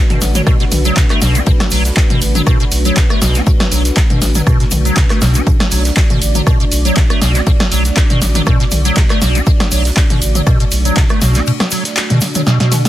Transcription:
Already playing: A3 D4 F#4 B4
0.10 B2, closed hi-hat, mid tom
0.21 A1, snare, open hi-hat, ride, shaker
0.35 F#3, snare, closed hi-hat, mid tom, shaker
0.47 B2, kick, cross-stick, ride, shaker
0.60 B2, snare, closed hi-hat
0.72 B1, open hi-hat, mid tom, ride, shaker
0.85 F#3, closed hi-hat, shaker
0.96 B2, kick, snare, clap, ride, shaker
1.10 A3, cross-stick, clap, closed hi-hat
1.22 B1 B2, snare, open hi-hat, ride, shaker
1.35 D4, closed hi-hat, ride, shaker
1.46 B2, kick, ride, shaker
1.60 cross-stick, snare, closed hi-hat
1.70 B1 F#3, open hi-hat, shaker
1.85 snare, closed hi-hat, shaker
1.97 kick, snare, clap, ride, shaker
2.10 B2, closed hi-hat, mid tom
2.21 A1, open hi-hat, ride, shaker
2.35 F#3, closed hi-hat, mid tom, shaker
2.47 B2, kick, cross-stick, ride, shaker
2.60 B2, closed hi-hat, ride
2.72 B1, open hi-hat, ride, shaker
2.85 F#3, closed hi-hat, shaker
2.96 B2, kick, snare, clap, ride, shaker
3.10 A3, cross-stick, closed hi-hat, ride
3.21 B1 B2, snare, open hi-hat, ride, shaker
3.35 D4, snare, closed hi-hat, shaker
3.47 B2, kick, ride, shaker
3.60 cross-stick, snare, closed hi-hat
3.72 B1 F#3, open hi-hat, ride, shaker
3.85 snare, closed hi-hat, shaker
3.96 kick, snare, clap, ride, shaker
4.10 B2, closed hi-hat, mid tom
4.22 A1, snare, open hi-hat, ride, shaker
4.35 F#3, snare, closed hi-hat, mid tom, shaker
4.47 B2, kick, cross-stick, ride, shaker
4.60 B2, snare, closed hi-hat
4.71 B1, open hi-hat, mid tom, ride, shaker
4.85 F#3, closed hi-hat, shaker
4.96 B2, kick, snare, clap, ride, shaker
5.10 A3, cross-stick, clap, closed hi-hat
5.21 B1 B2, snare, open hi-hat, ride, shaker
5.34 D4, closed hi-hat, ride, shaker
5.47 B2 D5, kick, ride, shaker
5.60 cross-stick, snare, closed hi-hat
5.71 B1 F#3, open hi-hat, shaker
5.85 snare, closed hi-hat, shaker
5.97 kick, snare, clap, ride, shaker
6.10 B2, closed hi-hat, mid tom
6.21 A1, open hi-hat, ride, shaker
6.35 F#3, closed hi-hat, mid tom, shaker
6.47 B2, kick, cross-stick, ride, shaker
6.60 B2, closed hi-hat, ride
6.72 B1, open hi-hat, ride, shaker
6.85 F#3, closed hi-hat, shaker
6.96 B2, kick, snare, clap, ride, shaker
7.10 A3, cross-stick, closed hi-hat, ride
7.22 B1 B2, snare, open hi-hat, ride, shaker
7.35 D4, snare, closed hi-hat, shaker
7.47 B2, kick, ride, shaker
7.60 cross-stick, snare, closed hi-hat
7.72 B1 F#3, open hi-hat, ride, shaker
7.85 snare, closed hi-hat, shaker
7.96 kick, snare, clap, ride, shaker
8.10 B2, closed hi-hat, mid tom
8.22 A1, snare, open hi-hat, ride, shaker
8.35 F#3, snare, closed hi-hat, mid tom, shaker
8.46 B2, kick, cross-stick, ride, shaker
8.60 B2, snare, closed hi-hat
8.71 B1, open hi-hat, mid tom, ride, shaker
8.85 F#3, closed hi-hat, shaker
8.96 B2, kick, snare, clap, ride, shaker
9.10 A3, cross-stick, clap, closed hi-hat
9.22 B1 B2, snare, open hi-hat, ride, shaker
9.35 D4, closed hi-hat, ride, shaker
9.46 B2, kick, ride, shaker
9.60 cross-stick, snare, closed hi-hat
9.71 B1 F#3, open hi-hat, shaker
9.85 snare, closed hi-hat, shaker
9.97 kick, snare, clap, ride, shaker
10.10 B2, closed hi-hat, mid tom
10.22 A1, open hi-hat, ride, shaker
10.35 F#3, closed hi-hat, mid tom, shaker
10.46 B2, kick, cross-stick, ride, shaker
10.60 B2, closed hi-hat, ride
10.71 B1, open hi-hat, ride, shaker
10.85 F#3, closed hi-hat, shaker
10.96 B2, kick, snare, clap, ride, shaker
11.09 A3, cross-stick, closed hi-hat, ride
11.21 B1 B2, snare, open hi-hat, ride, shaker
11.34 D4, snare, closed hi-hat, shaker
11.46 B2, ride, shaker
11.60 cross-stick, snare, closed hi-hat
11.71 F#3, open hi-hat, ride, shaker
11.85 snare, closed hi-hat, shaker
11.96 snare, clap, ride, shaker
12.10 B2, closed hi-hat, mid tom
12.21 snare, open hi-hat, ride, shaker
12.35 F#3, snare, closed hi-hat, mid tom, shaker
12.46 B2, snare, shaker
12.60 B2, snare, closed hi-hat
12.72 snare, open hi-hat, mid tom, ride, shaker
12.85 F#3, snare, closed hi-hat, shaker

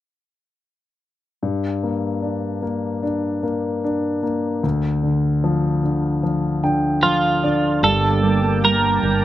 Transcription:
1.43 G2
1.83 A#3
2.22 D4
2.62 A#3
3.03 D4
3.43 A#3
3.84 D4
4.23 A#3
4.63 D2
5.03 D3
5.44 F3
5.84 D3
6.23 F3
6.64 D3 G5
7.03 F3 F4 F5
7.43 D3 D5
7.83 G1 G2 D3 G3 A#3 D4 A4 G5 A5 D6
8.23 G3 A#3 D4 A4
8.42 G3 A#3 D4 A4
8.62 G2 D3 G3 A#3 D4 A#4
9.02 G1 G3 A#3 D4

